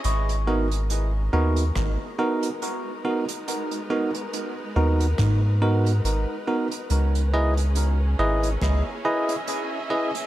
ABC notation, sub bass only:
X:1
M:4/4
L:1/8
Q:"Swing 16ths" 1/4=70
K:G#m
V:1 name="Sub bass" clef=bass
G,,,3 D,, G,,, z3 | z3 D,, G,,2 G,,, z | C,,3 G,,, C,, z3 |]